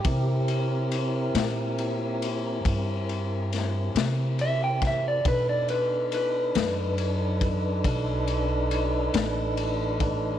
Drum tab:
RD |xxxxxxxxxxxx|xxxxxxxxxxxx|
SD |---o----oo-o|---o-----o--|
BD |o-----o----o|o----oo----o|